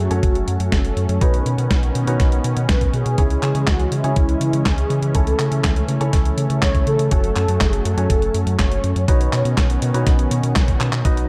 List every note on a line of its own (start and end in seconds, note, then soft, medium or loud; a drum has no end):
0.00 1.19 F#3 medium
0.00 1.17 A3 medium
0.00 9.04 C#4 medium
0.00 0.74 F#4 loud
0.11 0.21 F#2 medium
0.11 1.18 C#4 medium
0.11 1.18 F#4 medium
0.11 1.18 A4 medium
0.11 1.18 C#5 medium
0.11 closed hi-hat soft
0.23 0.43 F#1 medium
0.23 kick loud
0.23 closed hi-hat medium
0.35 closed hi-hat soft
0.48 0.58 F#2 medium
0.48 closed hi-hat medium
0.60 0.70 F#2 medium
0.60 closed hi-hat soft
0.72 0.92 F#1 medium
0.72 1.23 A4 medium
0.72 kick loud
0.72 snare loud
0.72 closed hi-hat medium
0.85 closed hi-hat soft
0.96 1.07 F#2 medium
0.96 closed hi-hat soft
1.09 1.19 F#2 medium
1.09 closed hi-hat soft
1.21 1.41 B1 loud
1.21 3.16 D#3 medium
1.21 3.16 B3 medium
1.21 2.04 D#4 medium
1.21 2.04 F#4 medium
1.21 2.04 B4 medium
1.21 2.16 B4 loud
1.21 2.04 C#5 medium
1.21 kick loud
1.21 closed hi-hat medium
1.34 closed hi-hat soft
1.46 1.56 B2 loud
1.46 closed hi-hat medium
1.58 1.68 B2 medium
1.58 closed hi-hat soft
1.71 1.91 B1 loud
1.71 kick loud
1.71 snare loud
1.71 closed hi-hat medium
1.83 closed hi-hat soft
1.95 2.05 B2 medium
1.95 closed hi-hat medium
2.07 2.17 B2 medium
2.07 3.15 D#4 medium
2.07 3.15 F#4 medium
2.07 3.15 B4 medium
2.07 3.15 C#5 medium
2.07 closed hi-hat soft
2.20 2.40 B1 medium
2.20 kick loud
2.20 snare medium
2.20 closed hi-hat medium
2.32 closed hi-hat soft
2.44 2.54 B2 medium
2.44 closed hi-hat medium
2.57 2.67 B2 medium
2.57 closed hi-hat soft
2.69 2.89 B1 medium
2.69 2.80 B4 loud
2.69 kick loud
2.69 snare loud
2.69 closed hi-hat medium
2.81 kick medium
2.81 closed hi-hat soft
2.93 3.03 B2 medium
2.93 3.42 G#4 loud
2.93 closed hi-hat soft
3.06 3.16 B2 medium
3.06 closed hi-hat soft
3.18 3.38 C#2 loud
3.18 7.08 E3 medium
3.18 5.13 G#3 medium
3.18 4.01 C#4 medium
3.18 4.01 E4 medium
3.18 4.01 G#4 medium
3.18 4.01 C#5 medium
3.18 kick loud
3.18 closed hi-hat medium
3.30 closed hi-hat soft
3.43 3.53 C#3 loud
3.43 3.68 G#4 loud
3.43 clap medium
3.43 closed hi-hat medium
3.55 3.65 C#3 medium
3.55 closed hi-hat soft
3.67 3.87 C#2 loud
3.67 3.90 F#4 loud
3.67 kick loud
3.67 snare loud
3.67 clap medium
3.67 closed hi-hat medium
3.79 closed hi-hat soft
3.92 4.02 C#3 medium
3.92 4.68 E4 loud
3.92 closed hi-hat medium
4.04 4.14 C#3 medium
4.04 5.12 C#4 medium
4.04 5.12 E4 medium
4.04 5.12 G#4 medium
4.04 5.12 C#5 medium
4.04 closed hi-hat soft
4.16 4.37 C#2 medium
4.16 kick loud
4.16 closed hi-hat medium
4.29 closed hi-hat soft
4.41 4.51 C#3 medium
4.41 closed hi-hat medium
4.53 4.63 C#3 medium
4.53 closed hi-hat soft
4.66 4.86 C#2 medium
4.66 5.16 G#4 loud
4.66 kick loud
4.66 snare loud
4.66 clap medium
4.66 closed hi-hat medium
4.78 closed hi-hat soft
4.90 5.00 C#3 loud
4.90 closed hi-hat soft
5.02 5.12 C#3 medium
5.02 closed hi-hat soft
5.15 5.35 C#2 loud
5.15 9.04 A3 medium
5.15 5.98 C#4 medium
5.15 5.98 E4 medium
5.15 5.98 A4 medium
5.15 6.09 A4 loud
5.15 5.98 C#5 medium
5.15 kick loud
5.15 closed hi-hat medium
5.27 closed hi-hat soft
5.39 5.49 C#3 loud
5.39 clap medium
5.39 closed hi-hat medium
5.52 5.62 C#3 medium
5.52 closed hi-hat soft
5.64 5.84 C#2 loud
5.64 kick loud
5.64 snare loud
5.64 clap medium
5.64 closed hi-hat medium
5.76 closed hi-hat soft
5.88 5.98 C#3 medium
5.88 closed hi-hat medium
6.01 6.11 C#3 medium
6.01 7.08 C#4 medium
6.01 7.09 E4 medium
6.01 7.09 A4 medium
6.01 7.09 C#5 medium
6.01 closed hi-hat soft
6.13 6.33 C#2 medium
6.13 kick loud
6.13 snare medium
6.13 closed hi-hat medium
6.25 closed hi-hat soft
6.37 6.48 C#3 medium
6.37 closed hi-hat medium
6.50 6.60 C#3 medium
6.50 closed hi-hat soft
6.62 6.82 C#2 medium
6.62 6.88 C#5 loud
6.62 kick loud
6.62 snare loud
6.62 clap medium
6.62 closed hi-hat medium
6.75 kick medium
6.75 closed hi-hat soft
6.87 6.97 C#3 medium
6.87 7.10 A4 medium
6.87 closed hi-hat soft
6.99 7.09 C#3 medium
6.99 closed hi-hat soft
7.11 7.32 F#1 loud
7.11 9.06 F#3 medium
7.11 7.95 C#4 medium
7.11 7.95 F#4 medium
7.11 7.35 A4 loud
7.11 7.95 A4 medium
7.11 7.95 C#5 medium
7.11 kick loud
7.11 closed hi-hat medium
7.24 closed hi-hat soft
7.36 7.46 F#2 loud
7.36 7.59 A4 medium
7.36 clap medium
7.36 closed hi-hat medium
7.48 7.58 F#2 loud
7.48 closed hi-hat soft
7.60 7.81 F#1 loud
7.60 7.83 G#4 medium
7.60 kick loud
7.60 snare loud
7.60 clap medium
7.60 closed hi-hat medium
7.73 closed hi-hat soft
7.85 7.95 F#2 medium
7.85 8.55 A4 loud
7.85 closed hi-hat medium
7.97 8.07 F#2 medium
7.97 9.05 C#4 medium
7.97 9.05 F#4 medium
7.97 9.05 A4 medium
7.97 9.05 C#5 medium
7.97 closed hi-hat soft
8.10 8.30 F#1 medium
8.10 kick loud
8.10 closed hi-hat medium
8.22 closed hi-hat soft
8.34 8.44 F#2 medium
8.34 closed hi-hat medium
8.46 8.57 F#2 medium
8.46 closed hi-hat soft
8.59 8.79 F#1 medium
8.59 9.07 C#5 loud
8.59 kick loud
8.59 snare loud
8.59 clap medium
8.59 closed hi-hat medium
8.71 closed hi-hat soft
8.84 8.94 F#2 loud
8.84 closed hi-hat soft
8.96 9.06 F#2 medium
8.96 closed hi-hat soft
9.08 9.28 B1 medium
9.08 11.03 D#3 medium
9.08 11.03 B3 medium
9.08 11.03 C#4 medium
9.08 9.91 D#4 medium
9.08 9.91 F#4 medium
9.08 9.91 B4 medium
9.08 9.91 C#5 medium
9.08 10.03 C#5 loud
9.08 kick loud
9.08 closed hi-hat medium
9.21 closed hi-hat soft
9.33 9.43 B2 loud
9.33 clap medium
9.33 closed hi-hat medium
9.45 9.55 B2 medium
9.45 closed hi-hat soft
9.57 9.77 B1 loud
9.57 kick loud
9.57 snare loud
9.57 clap medium
9.57 closed hi-hat medium
9.70 closed hi-hat soft
9.82 9.92 B2 medium
9.82 closed hi-hat medium
9.94 10.04 B2 medium
9.94 11.02 D#4 medium
9.94 11.02 F#4 medium
9.94 11.02 B4 medium
9.94 11.02 C#5 medium
9.94 closed hi-hat soft
10.07 10.27 B1 medium
10.07 kick loud
10.07 snare medium
10.07 closed hi-hat medium
10.19 closed hi-hat soft
10.31 10.41 B2 medium
10.31 closed hi-hat medium
10.43 10.53 B2 medium
10.43 closed hi-hat soft
10.56 10.76 B1 loud
10.56 kick loud
10.56 snare loud
10.56 clap medium
10.56 closed hi-hat loud
10.68 kick medium
10.68 closed hi-hat soft
10.80 10.90 B2 medium
10.80 clap medium
10.80 closed hi-hat soft
10.93 11.03 B2 loud
10.93 clap loud
10.93 closed hi-hat soft
11.05 11.25 B1 loud
11.05 11.29 F#3 medium
11.05 11.29 B3 medium
11.05 11.29 D#4 medium
11.05 11.29 F#4 medium
11.05 11.29 B4 medium
11.05 11.29 D#5 medium
11.05 kick loud
11.05 closed hi-hat medium
11.05 riser medium
11.17 closed hi-hat soft